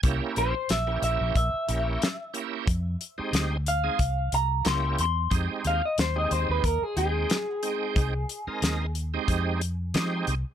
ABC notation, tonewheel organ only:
X:1
M:4/4
L:1/16
Q:"Swing 16ths" 1/4=91
K:Cm
V:1 name="Tonewheel organ"
[B,_D=EG]3 z2 [B,DEG]3 z2 [B,DEG]2 z2 [B,DEG]2 | z3 [A,CEG]2 z2 [A,CEA] z4 [B,_D=EG]2 z2 | [A,CEG]3 z2 [A,CEG]3 z2 [A,CEg]2 z2 [A,CEg]2- | [A,CEg] z2 [A,CEB]2 z2 [A,CEG]3 z2 [A,CEG]2 z2 |]